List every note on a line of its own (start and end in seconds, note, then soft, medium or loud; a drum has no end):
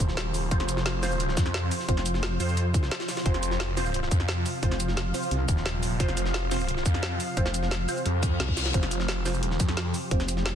0.00 0.50 D#1 loud
0.00 10.55 C3 medium
0.00 10.55 F3 medium
0.00 8.70 F4 medium
0.00 3.23 C5 medium
0.09 snare soft
0.17 snare loud
0.17 closed hi-hat medium
0.34 closed hi-hat medium
0.34 open hi-hat medium
0.34 shaker medium
0.51 1.36 F1 loud
0.51 1.01 C4 medium
0.51 1.01 F4 medium
0.51 1.01 C5 medium
0.51 kick loud
0.51 closed hi-hat medium
0.60 snare soft
0.60 closed hi-hat soft
0.69 closed hi-hat medium
0.69 shaker medium
0.77 snare medium
0.86 snare loud
0.86 closed hi-hat medium
1.03 1.12 C4 loud
1.03 1.12 F4 medium
1.03 1.12 C5 loud
1.03 snare soft
1.03 closed hi-hat medium
1.03 open hi-hat medium
1.03 shaker medium
1.11 shaker soft
1.20 closed hi-hat medium
1.29 snare soft
1.37 1.70 F2 loud
1.37 kick loud
1.37 snare loud
1.37 closed hi-hat medium
1.37 shaker medium
1.46 snare soft
1.54 snare soft
1.54 snare loud
1.54 closed hi-hat medium
1.71 closed hi-hat medium
1.71 open hi-hat medium
1.71 shaker medium
1.80 snare soft
1.89 2.39 F1 medium
1.89 2.03 C4 medium
1.89 2.03 F4 medium
1.89 2.03 C5 medium
1.89 kick loud
1.89 closed hi-hat loud
1.89 closed hi-hat medium
1.97 snare medium
1.97 snare soft
2.06 closed hi-hat medium
2.06 shaker medium
2.14 snare soft
2.23 snare loud
2.23 closed hi-hat medium
2.23 shaker soft
2.40 2.90 F2 loud
2.40 2.55 C4 medium
2.40 2.55 F4 medium
2.40 2.55 C5 loud
2.40 closed hi-hat medium
2.40 open hi-hat medium
2.40 shaker medium
2.49 shaker soft
2.57 closed hi-hat medium
2.74 kick loud
2.74 closed hi-hat medium
2.74 shaker medium
2.83 snare medium
2.91 snare loud
2.91 closed hi-hat medium
3.00 snare loud
3.00 closed hi-hat medium
3.08 snare loud
3.08 closed hi-hat medium
3.08 open hi-hat medium
3.08 shaker medium
3.17 snare loud
3.17 closed hi-hat medium
3.26 4.10 F1 loud
3.26 3.75 C4 medium
3.26 3.75 F4 medium
3.26 3.75 C5 medium
3.26 8.72 F5 medium
3.26 kick loud
3.26 closed hi-hat loud
3.26 closed hi-hat medium
3.34 snare soft
3.34 closed hi-hat soft
3.43 closed hi-hat medium
3.43 shaker medium
3.51 snare medium
3.60 snare loud
3.60 closed hi-hat medium
3.77 3.86 C4 loud
3.77 3.86 F4 medium
3.77 3.86 C5 loud
3.77 snare soft
3.77 closed hi-hat medium
3.77 open hi-hat medium
3.77 shaker medium
3.86 shaker soft
3.94 closed hi-hat medium
4.03 snare soft
4.11 4.44 F2 loud
4.11 kick loud
4.11 closed hi-hat medium
4.11 shaker medium
4.20 snare soft
4.28 snare loud
4.28 closed hi-hat medium
4.46 closed hi-hat medium
4.46 open hi-hat medium
4.46 shaker medium
4.63 5.13 F1 medium
4.63 4.77 C4 medium
4.63 4.77 F4 medium
4.63 4.77 C5 medium
4.63 kick loud
4.63 closed hi-hat medium
4.71 snare medium
4.71 snare soft
4.80 closed hi-hat medium
4.80 shaker medium
4.88 snare soft
4.97 snare loud
4.97 closed hi-hat medium
5.14 5.29 C4 medium
5.14 5.29 F4 medium
5.14 5.29 C5 loud
5.14 closed hi-hat medium
5.14 open hi-hat medium
5.14 shaker medium
5.23 shaker soft
5.31 5.47 C2 medium
5.31 closed hi-hat medium
5.48 5.99 D#1 loud
5.48 kick loud
5.48 closed hi-hat medium
5.48 shaker medium
5.57 snare soft
5.66 snare loud
5.66 closed hi-hat medium
5.83 closed hi-hat medium
5.83 open hi-hat medium
5.83 shaker medium
6.00 6.84 F1 loud
6.00 6.49 C4 medium
6.00 6.49 F4 medium
6.00 6.49 C5 medium
6.00 kick loud
6.00 closed hi-hat loud
6.00 closed hi-hat medium
6.08 snare soft
6.08 closed hi-hat soft
6.17 closed hi-hat medium
6.17 closed hi-hat loud
6.17 shaker medium
6.26 snare medium
6.34 snare loud
6.34 closed hi-hat medium
6.51 6.61 C4 loud
6.51 6.61 F4 medium
6.51 6.61 C5 loud
6.51 snare soft
6.51 closed hi-hat medium
6.51 open hi-hat medium
6.51 shaker medium
6.60 shaker soft
6.68 closed hi-hat medium
6.77 snare soft
6.86 7.19 F2 medium
6.86 kick loud
6.86 closed hi-hat medium
6.86 shaker medium
6.94 snare soft
7.03 snare loud
7.03 closed hi-hat medium
7.20 closed hi-hat medium
7.20 open hi-hat medium
7.20 shaker medium
7.37 7.87 F1 loud
7.37 7.52 C4 medium
7.37 7.52 F4 medium
7.37 7.52 C5 medium
7.37 kick loud
7.37 closed hi-hat medium
7.46 snare medium
7.46 snare soft
7.54 closed hi-hat medium
7.54 closed hi-hat loud
7.54 shaker medium
7.63 snare soft
7.71 snare loud
7.71 closed hi-hat medium
7.71 shaker soft
7.88 8.03 C4 medium
7.88 8.03 F4 medium
7.88 8.03 C5 loud
7.88 closed hi-hat medium
7.88 open hi-hat medium
7.88 shaker medium
7.97 shaker soft
8.06 8.39 F2 medium
8.06 closed hi-hat medium
8.06 reverse cymbal medium
8.23 kick loud
8.23 closed hi-hat medium
8.23 shaker medium
8.40 8.73 C2 medium
8.40 snare loud
8.40 closed hi-hat medium
8.48 kick medium
8.57 snare loud
8.57 closed hi-hat medium
8.57 open hi-hat medium
8.57 shaker medium
8.66 snare loud
8.66 closed hi-hat medium
8.74 9.34 F1 loud
8.74 9.24 C4 medium
8.74 9.24 F4 medium
8.74 10.55 G4 medium
8.74 10.55 C5 medium
8.74 9.24 C5 medium
8.74 kick loud
8.74 closed hi-hat medium
8.83 snare soft
8.83 closed hi-hat soft
8.91 closed hi-hat medium
8.91 closed hi-hat loud
8.91 shaker medium
9.00 snare medium
9.08 snare loud
9.08 closed hi-hat medium
9.26 9.35 C4 loud
9.26 9.35 F4 medium
9.26 9.35 C5 loud
9.26 snare soft
9.26 closed hi-hat medium
9.26 open hi-hat medium
9.26 shaker medium
9.34 9.59 E1 loud
9.34 shaker soft
9.43 closed hi-hat medium
9.51 snare soft
9.60 9.93 F2 loud
9.60 kick loud
9.60 closed hi-hat medium
9.60 closed hi-hat loud
9.60 shaker medium
9.68 snare soft
9.77 snare loud
9.77 closed hi-hat medium
9.94 closed hi-hat medium
9.94 open hi-hat medium
9.94 shaker medium
10.11 10.55 F1 medium
10.11 10.26 C4 medium
10.11 10.26 F4 medium
10.11 10.26 C5 medium
10.11 kick loud
10.11 closed hi-hat medium
10.20 snare medium
10.20 snare soft
10.28 closed hi-hat medium
10.28 closed hi-hat loud
10.28 shaker medium
10.37 snare soft
10.46 snare loud
10.46 closed hi-hat medium